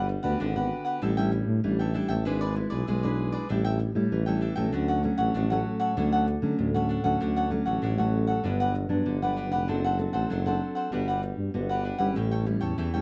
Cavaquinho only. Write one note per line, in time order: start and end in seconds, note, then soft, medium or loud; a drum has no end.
0.09 muted cavaquinho stroke soft
0.23 0.39 G4 medium
0.23 0.39 B4 medium
0.23 0.38 F#5 medium
0.40 0.54 D4 medium
0.40 0.55 G4 medium
0.40 0.55 B4 medium
0.40 0.55 F#5 medium
0.56 0.85 G4 medium
0.56 0.84 B4 medium
0.56 0.83 F#5 medium
0.85 1.01 G4 medium
0.85 1.00 B4 medium
0.85 1.00 F#5 medium
1.02 1.16 D4 medium
1.02 1.16 A4 medium
1.02 1.17 E5 medium
1.02 1.16 G5 medium
1.17 1.31 A4 medium
1.17 1.31 E5 medium
1.17 1.32 G5 medium
1.32 muted cavaquinho stroke soft
1.79 1.93 A4 medium
1.79 1.94 E5 medium
1.79 1.94 G5 medium
1.94 2.09 D4 soft
1.94 2.09 A4 soft
1.94 2.08 E5 medium
1.94 2.07 G5 medium
2.08 2.25 A4 medium
2.08 2.24 E5 medium
2.08 2.24 G5 medium
2.25 2.40 E4 medium
2.25 2.40 G#4 medium
2.25 2.40 B4 medium
2.25 2.40 D5 medium
2.41 2.55 G#4 medium
2.41 2.55 B4 medium
2.41 2.55 D5 medium
2.56 muted cavaquinho stroke soft
2.70 2.86 G#4 medium
2.70 2.86 B4 medium
2.70 2.85 D5 medium
2.87 3.02 E4 soft
2.87 3.02 G#4 medium
2.87 3.02 B4 soft
2.87 3.02 D5 soft
3.03 3.33 G#4 medium
3.03 3.32 B4 medium
3.03 3.31 D5 medium
3.32 3.48 G#4 medium
3.32 3.48 B4 medium
3.32 3.47 D5 medium
3.49 3.64 D4 soft
3.49 3.64 A4 medium
3.49 3.64 E5 medium
3.49 3.63 G5 medium
3.65 3.78 A4 medium
3.65 3.79 E5 medium
3.65 3.79 G5 medium
3.79 muted cavaquinho stroke soft
4.26 4.40 A4 medium
4.26 4.41 E5 medium
4.26 4.41 G5 medium
4.41 4.56 D4 soft
4.41 4.56 A4 medium
4.41 4.55 E5 medium
4.41 4.54 G5 soft
4.55 4.72 A4 medium
4.55 4.72 E5 medium
4.55 4.71 G5 medium
4.72 4.87 D4 medium
4.72 4.88 A4 medium
4.72 4.88 C#5 medium
4.72 4.87 F#5 medium
4.88 5.02 A4 medium
4.88 5.02 C#5 medium
4.88 5.03 F#5 medium
5.03 muted cavaquinho stroke soft
5.18 5.34 A4 medium
5.18 5.33 C#5 medium
5.18 5.33 F#5 medium
5.34 5.49 D4 medium
5.34 5.49 A4 medium
5.34 5.50 C#5 medium
5.34 5.49 F#5 medium
5.50 5.80 A4 medium
5.50 5.79 C#5 medium
5.50 5.78 F#5 medium
5.80 5.96 A4 medium
5.80 5.95 C#5 medium
5.80 5.95 F#5 medium
5.97 6.11 D4 soft
5.97 6.11 A4 medium
5.97 6.12 C#5 medium
5.97 6.11 F#5 medium
6.12 6.26 A4 medium
6.12 6.27 C#5 medium
6.12 6.27 F#5 medium
6.27 muted cavaquinho stroke soft
6.74 6.88 A4 medium
6.74 6.89 C#5 medium
6.74 6.89 F#5 medium
6.89 7.04 D4 soft
6.89 7.04 A4 soft
6.89 7.04 C#5 soft
6.89 7.03 F#5 medium
7.04 7.20 A4 medium
7.04 7.19 C#5 medium
7.04 7.19 F#5 medium
7.21 7.35 D4 medium
7.21 7.35 A4 soft
7.21 7.36 C#5 medium
7.21 7.35 F#5 medium
7.36 7.50 A4 medium
7.36 7.50 C#5 medium
7.36 7.51 F#5 medium
7.51 muted cavaquinho stroke soft
7.66 7.82 A4 medium
7.66 7.81 C#5 medium
7.66 7.81 F#5 medium
7.82 7.97 D4 soft
7.82 7.97 A4 medium
7.82 7.97 C#5 medium
7.82 7.97 F#5 medium
7.98 8.28 A4 soft
7.98 8.27 C#5 medium
7.98 8.26 F#5 medium
8.27 8.43 A4 medium
8.27 8.43 C#5 medium
8.27 8.43 F#5 medium
8.44 8.59 D4 soft
8.44 8.59 G4 soft
8.44 8.59 B4 medium
8.44 8.59 F#5 medium
8.60 8.74 G4 medium
8.60 8.74 B4 medium
8.60 8.74 F#5 medium
8.75 muted cavaquinho stroke soft
9.22 9.36 G4 medium
9.22 9.36 B4 medium
9.22 9.36 F#5 medium
9.36 9.51 D4 soft
9.36 9.51 G4 soft
9.36 9.51 B4 soft
9.36 9.50 F#5 medium
9.52 9.67 G4 medium
9.52 9.67 B4 medium
9.52 9.66 F#5 medium
9.68 9.82 D4 soft
9.68 9.83 A4 soft
9.68 9.83 C5 medium
9.68 9.83 F#5 soft
9.84 9.98 A4 medium
9.84 9.98 C5 medium
9.84 9.98 F#5 medium
9.99 muted cavaquinho stroke soft
10.13 10.29 A4 soft
10.13 10.29 C5 medium
10.13 10.28 F#5 medium
10.30 10.45 D4 soft
10.30 10.45 A4 soft
10.30 10.45 C5 medium
10.30 10.45 F#5 medium
10.46 10.76 A4 medium
10.46 10.75 C5 medium
10.46 10.74 F#5 medium
10.75 10.91 A4 soft
10.75 10.91 C5 medium
10.75 10.90 F#5 medium
10.92 11.06 D4 medium
10.92 11.07 G4 medium
10.92 11.07 B4 medium
10.92 11.07 F#5 medium
11.08 11.22 G4 medium
11.08 11.22 B4 medium
11.08 11.22 F#5 medium
11.22 muted cavaquinho stroke soft
11.69 11.83 G4 medium
11.69 11.84 B4 medium
11.69 11.84 F#5 medium
11.84 11.99 D4 soft
11.84 11.99 G4 soft
11.84 11.98 B4 soft
11.84 11.97 F#5 medium
11.98 12.15 G4 medium
11.98 12.14 B4 medium
11.98 12.14 F#5 medium
12.15 12.30 E4 soft
12.15 12.30 A4 medium
12.15 12.31 C#5 medium
12.15 12.30 G5 medium
12.31 12.45 A4 medium
12.31 12.46 C#5 medium
12.31 12.46 G5 medium
12.46 muted cavaquinho stroke soft
12.61 12.77 A4 medium
12.61 12.76 C#5 medium
12.61 12.76 G5 medium
12.78 12.92 E4 medium
12.78 12.92 A4 medium
12.78 12.93 C#5 medium
12.78 12.92 G5 medium
12.94 13.02 A4 medium
12.94 13.02 C#5 medium
12.94 13.02 G5 medium